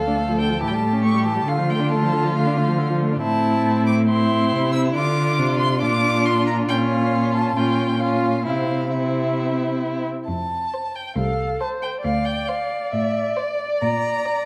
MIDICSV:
0, 0, Header, 1, 5, 480
1, 0, Start_track
1, 0, Key_signature, -1, "minor"
1, 0, Tempo, 434468
1, 1634, Time_signature, 4, 2, 24, 8
1, 3557, Key_signature, -1, "major"
1, 8357, Tempo, 452148
1, 11717, Tempo, 442152
1, 15758, End_track
2, 0, Start_track
2, 0, Title_t, "Violin"
2, 0, Program_c, 0, 40
2, 0, Note_on_c, 0, 77, 58
2, 431, Note_off_c, 0, 77, 0
2, 437, Note_on_c, 0, 79, 53
2, 661, Note_off_c, 0, 79, 0
2, 668, Note_on_c, 0, 81, 59
2, 746, Note_on_c, 0, 79, 46
2, 762, Note_off_c, 0, 81, 0
2, 809, Note_on_c, 0, 81, 60
2, 825, Note_off_c, 0, 79, 0
2, 1146, Note_off_c, 0, 81, 0
2, 1151, Note_on_c, 0, 85, 64
2, 1379, Note_off_c, 0, 85, 0
2, 1386, Note_on_c, 0, 81, 59
2, 1633, Note_on_c, 0, 77, 65
2, 1650, Note_off_c, 0, 81, 0
2, 1879, Note_on_c, 0, 79, 58
2, 1896, Note_off_c, 0, 77, 0
2, 2108, Note_off_c, 0, 79, 0
2, 2115, Note_on_c, 0, 81, 60
2, 2586, Note_off_c, 0, 81, 0
2, 2593, Note_on_c, 0, 77, 58
2, 3183, Note_off_c, 0, 77, 0
2, 3548, Note_on_c, 0, 81, 69
2, 4228, Note_off_c, 0, 81, 0
2, 4271, Note_on_c, 0, 86, 69
2, 4359, Note_off_c, 0, 86, 0
2, 4511, Note_on_c, 0, 84, 67
2, 5211, Note_off_c, 0, 84, 0
2, 5218, Note_on_c, 0, 88, 74
2, 5306, Note_off_c, 0, 88, 0
2, 5464, Note_on_c, 0, 86, 78
2, 6167, Note_off_c, 0, 86, 0
2, 6173, Note_on_c, 0, 84, 72
2, 6416, Note_off_c, 0, 84, 0
2, 6423, Note_on_c, 0, 86, 82
2, 6906, Note_on_c, 0, 84, 74
2, 6923, Note_off_c, 0, 86, 0
2, 7135, Note_off_c, 0, 84, 0
2, 7142, Note_on_c, 0, 82, 65
2, 7230, Note_off_c, 0, 82, 0
2, 7386, Note_on_c, 0, 79, 82
2, 7475, Note_off_c, 0, 79, 0
2, 7631, Note_on_c, 0, 77, 58
2, 8106, Note_off_c, 0, 77, 0
2, 8113, Note_on_c, 0, 81, 65
2, 8265, Note_off_c, 0, 81, 0
2, 8271, Note_on_c, 0, 81, 40
2, 8358, Note_on_c, 0, 79, 52
2, 8374, Note_off_c, 0, 81, 0
2, 8820, Note_on_c, 0, 77, 56
2, 8836, Note_off_c, 0, 79, 0
2, 9293, Note_off_c, 0, 77, 0
2, 9299, Note_on_c, 0, 77, 55
2, 9790, Note_on_c, 0, 76, 43
2, 9806, Note_off_c, 0, 77, 0
2, 11001, Note_off_c, 0, 76, 0
2, 11245, Note_on_c, 0, 81, 54
2, 11956, Note_on_c, 0, 79, 51
2, 11973, Note_off_c, 0, 81, 0
2, 12180, Note_off_c, 0, 79, 0
2, 12186, Note_on_c, 0, 77, 52
2, 12654, Note_off_c, 0, 77, 0
2, 12660, Note_on_c, 0, 81, 61
2, 12747, Note_off_c, 0, 81, 0
2, 12902, Note_on_c, 0, 79, 56
2, 12989, Note_off_c, 0, 79, 0
2, 13132, Note_on_c, 0, 77, 59
2, 13369, Note_on_c, 0, 79, 58
2, 13385, Note_off_c, 0, 77, 0
2, 13615, Note_on_c, 0, 77, 55
2, 13631, Note_off_c, 0, 79, 0
2, 14096, Note_off_c, 0, 77, 0
2, 14102, Note_on_c, 0, 76, 56
2, 14578, Note_on_c, 0, 74, 56
2, 14594, Note_off_c, 0, 76, 0
2, 15059, Note_on_c, 0, 82, 67
2, 15075, Note_off_c, 0, 74, 0
2, 15758, Note_off_c, 0, 82, 0
2, 15758, End_track
3, 0, Start_track
3, 0, Title_t, "Violin"
3, 0, Program_c, 1, 40
3, 0, Note_on_c, 1, 69, 37
3, 674, Note_on_c, 1, 67, 40
3, 691, Note_off_c, 1, 69, 0
3, 1638, Note_on_c, 1, 65, 41
3, 1654, Note_off_c, 1, 67, 0
3, 3553, Note_off_c, 1, 65, 0
3, 3559, Note_on_c, 1, 64, 44
3, 4473, Note_off_c, 1, 64, 0
3, 4522, Note_on_c, 1, 64, 51
3, 5472, Note_on_c, 1, 65, 47
3, 5488, Note_off_c, 1, 64, 0
3, 6425, Note_off_c, 1, 65, 0
3, 6431, Note_on_c, 1, 65, 56
3, 7376, Note_off_c, 1, 65, 0
3, 7391, Note_on_c, 1, 65, 50
3, 8337, Note_off_c, 1, 65, 0
3, 8361, Note_on_c, 1, 65, 45
3, 8820, Note_off_c, 1, 65, 0
3, 8832, Note_on_c, 1, 65, 43
3, 9297, Note_off_c, 1, 65, 0
3, 9303, Note_on_c, 1, 64, 35
3, 9783, Note_off_c, 1, 64, 0
3, 9796, Note_on_c, 1, 64, 38
3, 11003, Note_off_c, 1, 64, 0
3, 11723, Note_on_c, 1, 72, 42
3, 12078, Note_off_c, 1, 72, 0
3, 12671, Note_on_c, 1, 72, 40
3, 13028, Note_off_c, 1, 72, 0
3, 13625, Note_on_c, 1, 72, 41
3, 13986, Note_off_c, 1, 72, 0
3, 14578, Note_on_c, 1, 72, 45
3, 14948, Note_off_c, 1, 72, 0
3, 15545, Note_on_c, 1, 74, 43
3, 15758, Note_off_c, 1, 74, 0
3, 15758, End_track
4, 0, Start_track
4, 0, Title_t, "Viola"
4, 0, Program_c, 2, 41
4, 79, Note_on_c, 2, 62, 33
4, 187, Note_on_c, 2, 57, 38
4, 204, Note_off_c, 2, 62, 0
4, 314, Note_on_c, 2, 53, 35
4, 331, Note_off_c, 2, 57, 0
4, 424, Note_on_c, 2, 50, 38
4, 441, Note_off_c, 2, 53, 0
4, 545, Note_on_c, 2, 53, 33
4, 561, Note_off_c, 2, 50, 0
4, 663, Note_off_c, 2, 53, 0
4, 670, Note_on_c, 2, 52, 37
4, 779, Note_on_c, 2, 55, 35
4, 796, Note_off_c, 2, 52, 0
4, 907, Note_on_c, 2, 57, 36
4, 923, Note_off_c, 2, 55, 0
4, 1022, Note_on_c, 2, 61, 38
4, 1039, Note_off_c, 2, 57, 0
4, 1144, Note_on_c, 2, 57, 42
4, 1161, Note_off_c, 2, 61, 0
4, 1261, Note_on_c, 2, 55, 40
4, 1277, Note_off_c, 2, 57, 0
4, 1386, Note_on_c, 2, 52, 41
4, 1403, Note_off_c, 2, 55, 0
4, 1503, Note_on_c, 2, 55, 36
4, 1519, Note_off_c, 2, 52, 0
4, 1623, Note_off_c, 2, 55, 0
4, 1629, Note_on_c, 2, 50, 41
4, 1752, Note_on_c, 2, 53, 40
4, 1768, Note_off_c, 2, 50, 0
4, 1874, Note_on_c, 2, 57, 39
4, 1891, Note_off_c, 2, 53, 0
4, 1988, Note_on_c, 2, 62, 39
4, 2005, Note_off_c, 2, 57, 0
4, 2113, Note_on_c, 2, 57, 44
4, 2129, Note_off_c, 2, 62, 0
4, 2239, Note_on_c, 2, 53, 39
4, 2256, Note_off_c, 2, 57, 0
4, 2352, Note_on_c, 2, 50, 37
4, 2369, Note_off_c, 2, 53, 0
4, 2478, Note_on_c, 2, 53, 37
4, 2495, Note_off_c, 2, 50, 0
4, 2587, Note_off_c, 2, 53, 0
4, 2594, Note_on_c, 2, 57, 46
4, 2718, Note_on_c, 2, 62, 40
4, 2735, Note_off_c, 2, 57, 0
4, 2841, Note_on_c, 2, 57, 45
4, 2858, Note_off_c, 2, 62, 0
4, 2958, Note_on_c, 2, 53, 39
4, 2975, Note_off_c, 2, 57, 0
4, 3075, Note_on_c, 2, 50, 42
4, 3092, Note_off_c, 2, 53, 0
4, 3202, Note_on_c, 2, 53, 42
4, 3218, Note_off_c, 2, 50, 0
4, 3333, Note_on_c, 2, 57, 40
4, 3349, Note_off_c, 2, 53, 0
4, 3447, Note_on_c, 2, 62, 40
4, 3464, Note_off_c, 2, 57, 0
4, 3557, Note_off_c, 2, 62, 0
4, 3564, Note_on_c, 2, 60, 45
4, 4475, Note_off_c, 2, 60, 0
4, 4515, Note_on_c, 2, 60, 53
4, 5453, Note_off_c, 2, 60, 0
4, 5468, Note_on_c, 2, 62, 54
4, 6407, Note_off_c, 2, 62, 0
4, 6432, Note_on_c, 2, 62, 54
4, 7393, Note_on_c, 2, 61, 52
4, 7410, Note_off_c, 2, 62, 0
4, 8353, Note_off_c, 2, 61, 0
4, 8360, Note_on_c, 2, 61, 47
4, 8820, Note_off_c, 2, 61, 0
4, 8826, Note_on_c, 2, 61, 46
4, 9298, Note_off_c, 2, 61, 0
4, 9306, Note_on_c, 2, 60, 36
4, 9784, Note_off_c, 2, 60, 0
4, 9799, Note_on_c, 2, 60, 43
4, 11004, Note_off_c, 2, 60, 0
4, 12197, Note_on_c, 2, 69, 41
4, 12677, Note_on_c, 2, 72, 44
4, 12693, Note_off_c, 2, 69, 0
4, 13142, Note_off_c, 2, 72, 0
4, 13149, Note_on_c, 2, 74, 50
4, 15758, Note_off_c, 2, 74, 0
4, 15758, End_track
5, 0, Start_track
5, 0, Title_t, "Cello"
5, 0, Program_c, 3, 42
5, 0, Note_on_c, 3, 38, 42
5, 674, Note_on_c, 3, 45, 44
5, 691, Note_off_c, 3, 38, 0
5, 1619, Note_off_c, 3, 45, 0
5, 1626, Note_on_c, 3, 50, 48
5, 3515, Note_off_c, 3, 50, 0
5, 3559, Note_on_c, 3, 45, 53
5, 4994, Note_on_c, 3, 48, 52
5, 5011, Note_off_c, 3, 45, 0
5, 5467, Note_off_c, 3, 48, 0
5, 5474, Note_on_c, 3, 50, 57
5, 5951, Note_on_c, 3, 48, 53
5, 5967, Note_off_c, 3, 50, 0
5, 6426, Note_on_c, 3, 46, 56
5, 6443, Note_off_c, 3, 48, 0
5, 7388, Note_off_c, 3, 46, 0
5, 7394, Note_on_c, 3, 46, 58
5, 8339, Note_off_c, 3, 46, 0
5, 8356, Note_on_c, 3, 46, 50
5, 9308, Note_on_c, 3, 48, 43
5, 9324, Note_off_c, 3, 46, 0
5, 11026, Note_off_c, 3, 48, 0
5, 11241, Note_on_c, 3, 41, 47
5, 11618, Note_off_c, 3, 41, 0
5, 12187, Note_on_c, 3, 36, 50
5, 12570, Note_off_c, 3, 36, 0
5, 13145, Note_on_c, 3, 38, 52
5, 13526, Note_off_c, 3, 38, 0
5, 14104, Note_on_c, 3, 45, 51
5, 14485, Note_off_c, 3, 45, 0
5, 15071, Note_on_c, 3, 46, 53
5, 15456, Note_off_c, 3, 46, 0
5, 15758, End_track
0, 0, End_of_file